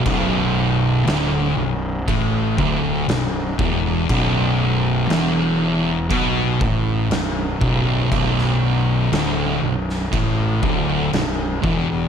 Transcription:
<<
  \new Staff \with { instrumentName = "Distorted electric guitar" } { \clef bass \time 4/4 \key b \minor \tempo 4 = 60 b,,4 d,8 b,,8 a,8 d,8 b,,8 e,8 | b,,4 e,4 b,8 a,8 b,,8 b,,8 | b,,4 d,8 b,,8 a,8 d,8 b,,8 e,8 | }
  \new Staff \with { instrumentName = "Distorted electric guitar" } { \clef bass \time 4/4 \key b \minor b,,4 d,8 b,,8 a,8 d,8 b,,8 e,8 | b,,4 e,4 b,8 a,8 b,,8 b,,8 | b,,4 d,8 b,,8 a,8 d,8 b,,8 e,8 | }
  \new Staff \with { instrumentName = "Fingered electric bass" } { \clef bass \time 4/4 \key b \minor b,,,4 d,,8 b,,,8 a,,8 d,,8 b,,,8 e,,8 | b,,,4 e,,4 b,,8 a,,8 b,,,8 b,,,8 | b,,,4 d,,8 b,,,8 a,,8 d,,8 b,,,8 e,,8 | }
  \new DrumStaff \with { instrumentName = "Drums" } \drummode { \time 4/4 <cymc bd>4 <cymc sn>4 <cymc bd>8 bd8 <cymc sn>8 bd8 | <cymc bd>4 <cymc sn>4 <cymc bd>8 bd8 <cymc sn>8 bd8 | <cymc bd>16 sn8. <cymc sn>8. sn16 <cymc bd>8 bd8 <cymc sn>8 bd8 | }
>>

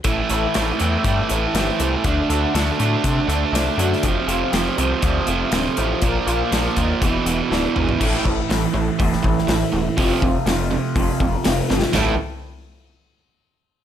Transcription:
<<
  \new Staff \with { instrumentName = "Clean electric guitar" } { \time 4/4 \key a \phrygian \tempo 4 = 121 a,8 e'8 c'8 e'8 a8 e8 c'8 e'8 | d8 fis'8 d'8 fis'8 a8 d8 d'8 fis'8 | f,8 f'8 c'8 f'8 a8 f8 c'8 f'8 | bes,8 f'8 d'8 f'8 e,8 e8 d'8 e'8 |
\key a \minor <a, e a c' e'>8 <a c' e'>8 <e a c' e'>8 <a c' e'>8 <a, e a c' e'>4 <e a c' e'>8 <a c' e'>8 | <f, c f a c' f'>8 <f a c' f'>8 <f a c' f'>8 <f a c' f'>8 <f, c f a c' f'>4 <f a c' f'>8 <f a c' f'>8 | <a, e a c' e'>8 r2. r8 | }
  \new Staff \with { instrumentName = "Overdriven electric guitar" } { \clef bass \time 4/4 \key a \phrygian <a, e a>8 <a, e a>8 <a, e a>8 <a, e a>8 <a, e a>8 <a, e a>8 <a, e a>8 <a, e a>8 | <d a d'>8 <d a d'>8 <d a d'>8 <d a d'>8 <d a d'>8 <d a d'>8 <d a d'>8 <d a d'>8 | <f, c f>8 <f, c f>8 <f, c f>8 <f, c f>8 <f, c f>8 <f, c f>8 <f, c f>8 <f, c f>8 | <bes, f bes>8 <bes, f bes>8 <bes, f bes>8 <bes, f bes>8 <e, b, e>8 <e, b, e>8 <e, b, e>8 <e, b, e>8 |
\key a \minor <a, e a>8 <a, e>8 <a, e>8 <a, e>8 <a, e>8 <a, e>8 <a, e>8 <a, e>8 | <f, c f>8 <f, c>8 <f, c>8 <f, c>8 <f, c>8 <f, c>8 <f, c>8 <f, c>8 | <a, e a>8 r2. r8 | }
  \new Staff \with { instrumentName = "Analog synth bass" } { \clef bass \time 4/4 \key a \phrygian a,,8 a,,8 a,,8 e,8 g,8 a,,8 g,,8 c,8 | d,8 d,8 d,8 a,8 c8 d,8 c,8 fis,8 | f,,8 f,,8 f,,8 c,8 d,8 f,,8 d,,8 a,,8 | bes,,8 bes,,8 bes,,8 dis,8 e,,8 e,,8 d,,8 gis,,8 |
\key a \minor a,,8 a,,8 a,,8 a,,8 e,,8 a,,8 a,,8 e,,8 | f,,8 f,,8 f,,4 f,,8 f,,8 f,,8 g,,8 | a,,8 r2. r8 | }
  \new DrumStaff \with { instrumentName = "Drums" } \drummode { \time 4/4 <hh bd>8 hh8 <hh sn>8 hh8 <hh bd>8 hh8 <hh sn>8 hh8 | <hh bd>8 hh8 <hh sn>8 hh8 <hh bd>8 hh8 <hh sn>8 hh16 sn16 | <hh bd>8 hh8 <hh sn>8 hh8 <hh bd>8 hh8 <hh sn>8 hh8 | <hh bd>8 hh8 <hh sn>8 <hh bd>8 <hh bd>8 hh8 sn8 toml16 tomfh16 |
<cymc bd>8 bd8 <hho sn>4 <hho bd>16 sn16 bd16 sn16 <hho sn>4 | <hho bd>8 bd8 <hho sn>4 <hho bd>8 bd8 <hho sn>8 sn16 sn16 | <cymc sn tomfh>4 r4 r4 r4 | }
>>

